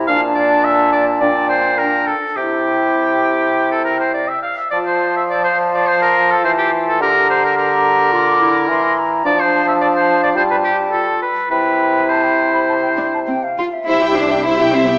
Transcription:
0.00 0.11 E4 soft
0.08 1.18 A#2 medium
0.08 1.21 D4 medium
0.08 0.20 F5 medium
0.08 1.23 A5 medium
0.34 0.66 D5 medium
0.64 0.92 E5 medium
0.92 1.05 D5 medium
1.20 2.07 A#2 soft
1.20 1.62 D4 soft
1.20 1.48 D5 medium
1.20 1.78 G5 soft
1.49 1.79 C5 medium
1.78 2.16 D4 soft
1.78 2.09 A#4 medium
1.78 2.16 G5 soft
2.07 2.38 A4 soft
2.36 4.40 C3 soft
2.36 4.40 E4 soft
2.36 3.70 G4 soft
2.36 4.41 G5 soft
3.71 3.84 A4 soft
3.84 3.99 A#4 soft
4.00 4.13 C5 soft
4.13 4.30 D5 soft
4.28 4.42 E5 soft
4.42 4.57 F5 soft
4.57 4.70 E5 soft
4.71 6.46 F3 soft
4.71 6.97 F4 soft
4.71 4.78 D5 medium
4.71 5.27 A5 soft
4.86 5.15 C5 soft
5.16 5.23 E5 soft
5.30 5.44 D5 soft
5.30 7.03 A5 soft
5.44 5.57 C5 soft
5.74 5.88 D5 medium
5.87 6.01 C5 medium
6.02 6.33 A#4 medium
6.31 6.44 A4 soft
6.44 7.03 E3 soft
6.44 6.51 C5 medium
6.58 6.71 G4 soft
6.88 7.01 A4 soft
7.01 8.71 D3 medium
7.01 8.14 G4 soft
7.01 7.29 A#4 medium
7.01 7.56 A#5 soft
7.30 7.43 C5 medium
7.44 7.57 A#4 soft
7.57 8.94 A#4 medium
7.57 8.12 A#5 soft
8.13 8.42 F4 soft
8.13 8.69 D6 soft
8.41 9.24 E4 soft
8.69 9.24 E3 soft
8.69 9.00 C6 soft
8.99 9.28 A#5 soft
9.25 10.37 F3 medium
9.25 10.37 D4 soft
9.25 9.41 D5 medium
9.25 9.81 A5 soft
9.40 9.67 C5 medium
9.68 9.74 E5 medium
9.81 9.87 D5 medium
9.81 10.35 A5 soft
9.95 10.22 C5 medium
10.23 10.29 D5 medium
10.35 11.21 G3 soft
10.35 10.75 F4 soft
10.35 10.43 C5 medium
10.35 11.21 A5 soft
10.50 10.56 B4 soft
10.64 10.77 G4 medium
10.91 11.29 F4 soft
10.91 11.20 A4 soft
11.22 11.50 B4 soft
11.49 13.54 C3 soft
11.49 13.53 E4 soft
11.49 12.11 B4 medium
11.49 12.01 G5 soft
12.09 13.28 C5 soft
12.09 12.25 A5 soft
12.24 12.54 G5 soft
12.54 12.60 B5 soft
12.69 12.75 A5 soft
12.83 12.89 G5 soft
12.98 13.06 D4 medium
13.14 13.20 A5 soft
13.27 13.35 C4 soft
13.27 13.45 G5 soft
13.43 13.75 F5 soft
13.57 13.65 F4 medium
13.73 13.87 E5 soft
13.86 14.98 C2 soft
13.86 14.00 E4 soft
13.86 14.15 E4 medium
13.86 14.40 G4 soft
13.86 14.00 C5 soft
13.86 14.40 E5 soft
13.86 14.01 E5 soft
14.01 14.15 G4 soft
14.01 14.16 E5 soft
14.01 14.16 G5 soft
14.15 14.44 D4 medium
14.15 14.30 E4 soft
14.15 14.30 C5 soft
14.15 14.31 E5 soft
14.29 14.44 G4 soft
14.29 14.45 E5 soft
14.29 14.45 G5 soft
14.43 14.72 E4 medium
14.43 14.57 E4 soft
14.43 14.98 G4 soft
14.43 14.58 C5 soft
14.43 14.98 E5 soft
14.43 14.58 E5 soft
14.58 14.73 G4 soft
14.58 14.73 E5 soft
14.58 14.74 G5 soft
14.72 14.87 C4 medium
14.72 14.87 E4 soft
14.72 14.88 C5 soft
14.72 14.88 E5 soft
14.86 14.98 B3 medium
14.86 14.98 G4 soft
14.86 14.98 E5 soft
14.86 14.98 G5 soft

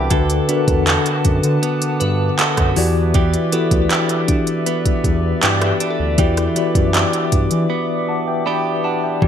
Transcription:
0.00 0.13 C2 medium
0.00 0.10 E3 medium
0.00 0.48 D4 medium
0.00 0.18 G4 medium
0.00 0.44 A4 medium
0.00 0.11 B4 medium
0.00 0.66 D5 medium
0.00 0.29 E5 medium
0.00 0.12 F#5 medium
0.00 0.28 G5 medium
0.00 0.13 A5 medium
0.00 0.13 B5 medium
0.00 0.12 D6 medium
0.00 6.14 D6 medium
0.10 0.40 D2 loud
0.10 0.46 D3 medium
0.10 3.18 D3 medium
0.10 0.46 D4 medium
0.10 0.47 F#4 medium
0.10 0.87 A4 medium
0.10 0.47 A4 medium
0.10 2.74 B4 medium
0.10 0.47 B4 loud
0.10 2.73 F#5 medium
0.10 2.73 A5 medium
0.10 kick loud
0.10 closed hi-hat medium
0.30 closed hi-hat medium
0.48 1.90 D3 medium
0.48 0.86 B3 medium
0.48 1.90 D4 medium
0.48 1.91 F#4 medium
0.48 1.91 A4 medium
0.48 0.56 A#4 medium
0.48 closed hi-hat medium
0.57 1.94 B4 medium
0.68 0.97 E2 medium
0.68 kick loud
0.68 closed hi-hat medium
0.87 1.62 B3 medium
0.87 2.38 F#4 medium
0.87 2.39 A4 medium
0.87 clap loud
0.87 closed hi-hat medium
1.06 closed hi-hat soft
1.25 1.40 F#2 loud
1.25 kick medium
1.25 closed hi-hat medium
1.43 1.59 D3 medium
1.43 closed hi-hat medium
1.63 2.38 B3 medium
1.63 closed hi-hat medium
1.82 closed hi-hat medium
2.00 2.30 G2 medium
2.00 3.10 B4 medium
2.00 closed hi-hat soft
2.39 3.52 B3 medium
2.39 2.85 F#4 medium
2.39 2.85 A4 medium
2.39 clap loud
2.39 closed hi-hat medium
2.57 2.73 F#2 medium
2.57 kick medium
2.57 cross-stick medium
2.57 closed hi-hat soft
2.76 3.36 E2 loud
2.76 3.47 E3 medium
2.76 3.14 E3 medium
2.76 3.47 E4 medium
2.76 3.48 F#4 medium
2.76 3.48 G4 medium
2.76 9.18 B4 medium
2.76 9.18 D5 medium
2.76 3.48 D5 loud
2.76 9.18 E5 medium
2.76 open hi-hat medium
3.14 6.18 E3 medium
3.14 3.91 G4 medium
3.14 kick loud
3.14 closed hi-hat medium
3.34 closed hi-hat soft
3.52 4.94 E3 medium
3.52 3.90 B3 medium
3.52 4.94 E4 medium
3.52 4.94 F#4 medium
3.52 4.95 G4 medium
3.52 5.05 A4 medium
3.52 4.95 B4 medium
3.52 closed hi-hat medium
3.71 3.86 D2 medium
3.71 kick loud
3.71 closed hi-hat medium
3.90 4.66 B3 medium
3.90 5.42 D4 medium
3.90 5.43 G4 medium
3.90 clap loud
3.90 closed hi-hat medium
4.09 closed hi-hat soft
4.28 5.81 D4 medium
4.28 kick medium
4.28 closed hi-hat medium
4.47 closed hi-hat medium
4.66 5.42 B3 medium
4.66 closed hi-hat medium
4.86 kick medium
4.86 closed hi-hat medium
5.04 5.34 E2 medium
5.04 kick medium
5.04 closed hi-hat soft
5.42 5.72 G2 medium
5.42 6.56 B3 medium
5.42 5.80 D4 medium
5.42 6.53 E4 medium
5.42 6.19 G4 medium
5.42 clap loud
5.42 closed hi-hat medium
5.61 cross-stick loud
5.61 closed hi-hat soft
5.67 6.74 G4 medium
5.80 6.94 D4 medium
5.80 closed hi-hat medium
5.90 6.95 A4 medium
6.00 6.20 D2 medium
6.18 6.48 E2 loud
6.18 6.53 E3 medium
6.18 9.22 E3 medium
6.18 6.54 E4 medium
6.18 6.54 F#4 medium
6.18 6.95 G4 medium
6.18 6.54 G4 medium
6.18 6.54 D5 medium
6.18 9.19 D6 medium
6.18 kick loud
6.18 closed hi-hat medium
6.37 cross-stick medium
6.37 closed hi-hat soft
6.56 7.98 E3 medium
6.56 6.94 B3 medium
6.56 7.98 E4 medium
6.56 7.98 F#4 medium
6.56 7.98 G4 medium
6.56 7.99 D5 medium
6.56 closed hi-hat medium
6.75 7.05 F#2 medium
6.75 kick loud
6.75 closed hi-hat medium
6.94 7.69 B3 medium
6.94 8.46 D4 medium
6.94 8.47 G4 medium
6.94 clap loud
6.94 closed hi-hat medium
7.13 closed hi-hat soft
7.32 7.47 G2 loud
7.32 kick medium
7.32 closed hi-hat medium
7.51 7.66 E3 medium
7.51 closed hi-hat medium
7.70 8.45 B3 medium
8.09 8.27 F#5 medium
8.09 8.26 A5 medium
8.28 8.46 E5 medium
8.28 8.45 G5 medium
8.46 9.28 B3 medium
8.46 8.84 D4 medium
8.46 9.28 G4 medium
8.46 8.83 G5 medium
8.46 8.82 B5 medium
8.84 9.28 D4 medium
8.84 9.03 F#5 medium
8.84 9.02 A5 medium
9.04 9.28 E5 medium
9.04 9.28 G5 medium
9.21 9.28 E1 loud
9.21 9.28 E3 medium
9.21 9.28 G3 medium
9.21 9.28 E4 medium
9.21 9.28 F#4 medium
9.21 9.28 G4 medium
9.21 9.28 D5 medium
9.21 9.28 E5 medium
9.21 9.28 F#5 medium
9.21 9.28 D6 medium
9.21 kick loud

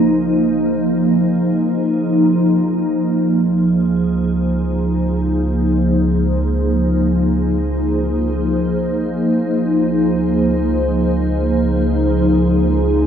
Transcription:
0.00 3.05 C#2 medium
0.00 3.02 F3 medium
0.00 3.05 A#3 medium
0.00 3.05 D#4 medium
0.00 3.04 G#4 medium
0.00 3.05 C5 medium
3.03 9.23 C#2 medium
3.03 13.07 F3 medium
3.25 13.07 G#4 medium
3.50 13.07 A#3 medium
3.58 13.07 D#4 medium
3.99 13.07 C5 medium
9.28 13.07 C#2 medium

